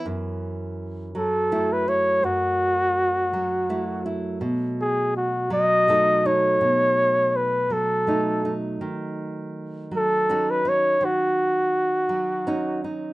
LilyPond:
<<
  \new Staff \with { instrumentName = "Flugelhorn" } { \time 6/8 \key fis \dorian \tempo 4. = 55 r4. a'8. b'16 cis''8 | fis'2~ fis'8 r8 | r8 gis'8 fis'8 dis''4 cis''8~ | cis''4 b'8 a'4 r8 |
r4. a'8. b'16 cis''8 | fis'2~ fis'8 r8 | }
  \new Staff \with { instrumentName = "Nylon-string guitar" } { \time 6/8 \key fis \dorian << { r2 <a e'>8 e'8 | r2 <a e'>8 e'8 | r2 <a dis' a'>8 dis'8 | r2 <a dis'>8 dis'8 |
r2 <cis' dis' fis'>8 dis'8 | r2 <cis' dis'>8 dis'8 | } \\ { <fis, e>4. fis4. | fis,4. fis4. | b,4. fis4. | b,4. fis4. |
dis4. fis4. | dis4. fis4. | } >> }
>>